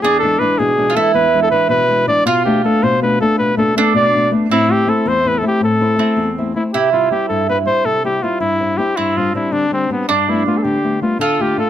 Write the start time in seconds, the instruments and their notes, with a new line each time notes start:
0.02 nylon-string guitar E2, mandolin D4, flugelhorn G#4
0.19 nylon-string guitar E3 G#3 D4, flugelhorn A4
0.39 nylon-string guitar E3 G#3 D4, flugelhorn B4
0.58 nylon-string guitar B2, flugelhorn G#4
0.77 nylon-string guitar E3 G#3 D4
0.90 mandolin F4
0.95 nylon-string guitar E3 G#3 D4, mandolin E4, flugelhorn A4
1.14 nylon-string guitar E2, flugelhorn B4
1.34 nylon-string guitar E3 G#3 D4
1.43 flugelhorn A4
1.51 nylon-string guitar E3 G#3 D4, flugelhorn B4
1.69 nylon-string guitar B2, flugelhorn B4
1.88 nylon-string guitar E3 G#3 D4
2.07 nylon-string guitar E3 G#3 D4, flugelhorn D5
2.25 nylon-string guitar B2, flugelhorn F4, mandolin F4
2.45 nylon-string guitar A3 B3 D4, flugelhorn G4
2.64 nylon-string guitar A3 B3 D4, flugelhorn A4
2.83 nylon-string guitar B2, flugelhorn C5
3.02 nylon-string guitar A3 B3 D4, flugelhorn B4
3.21 nylon-string guitar A3 B3 D4, flugelhorn A4
3.39 nylon-string guitar B2, flugelhorn B4
3.57 nylon-string guitar A3 B3 D4, flugelhorn A4
3.75 nylon-string guitar A3 B3 D4, mandolin D4, flugelhorn A4
3.94 nylon-string guitar B2, flugelhorn D5
4.13 nylon-string guitar A3 B3 D4
4.31 nylon-string guitar A3 B3 D4
4.49 nylon-string guitar A2, mandolin C4, flugelhorn E4
4.68 nylon-string guitar A3 C4 E4
4.72 flugelhorn G4
4.87 nylon-string guitar A3 C4 E4, flugelhorn A4
5.06 nylon-string guitar E2, flugelhorn C5
5.24 nylon-string guitar A3 C4 E4, flugelhorn B4
5.38 flugelhorn A4
5.42 nylon-string guitar A3 C4 E4
5.48 flugelhorn G4
5.61 nylon-string guitar A2, flugelhorn A4
5.81 nylon-string guitar A3 C4 E4
5.98 nylon-string guitar A3 C4 E4, mandolin C4
6.17 nylon-string guitar E2
6.38 nylon-string guitar A3 C4 E4
6.55 nylon-string guitar A3 C4 E4, flugelhorn E4
6.73 nylon-string guitar C3, mandolin E4, flugelhorn G4
6.92 nylon-string guitar G3 C4 E4, flugelhorn F4
7.11 nylon-string guitar G3 C4 E4, flugelhorn G4
7.29 nylon-string guitar G2, flugelhorn A4
7.49 nylon-string guitar G3 C4 E4, flugelhorn B4
7.66 nylon-string guitar G3 C4 E4, flugelhorn C5
7.85 nylon-string guitar C3, flugelhorn A4
8.04 nylon-string guitar G3 C4 E4, flugelhorn G4
8.23 nylon-string guitar G3 C4 E4, flugelhorn F4
8.40 nylon-string guitar G2, flugelhorn E4
8.60 nylon-string guitar G3 C4 E4
8.77 nylon-string guitar G3 C4 E4, flugelhorn G4
8.96 nylon-string guitar G2, mandolin C4, flugelhorn E4
9.17 nylon-string guitar G3 C4 D4, flugelhorn F4
9.35 nylon-string guitar G3 C4 D4, flugelhorn E4
9.52 nylon-string guitar D3, flugelhorn D4
9.72 nylon-string guitar G3 C4 D4, flugelhorn C4
9.89 nylon-string guitar G3 C4 D4, flugelhorn B3
10.08 nylon-string guitar G2, flugelhorn D4, mandolin D4
10.28 nylon-string guitar G3 A3 B3, flugelhorn E4
10.46 nylon-string guitar G3 A3 B3, flugelhorn F4
10.58 flugelhorn A4
10.63 nylon-string guitar D3, flugelhorn G4
10.84 nylon-string guitar G3 A3 B3
11.02 nylon-string guitar G3 A3 B3, flugelhorn F4
11.19 nylon-string guitar D3, mandolin F4, flugelhorn A4
11.39 nylon-string guitar A3 D4 F4, flugelhorn G4
11.57 nylon-string guitar A3 D4 F4, flugelhorn A4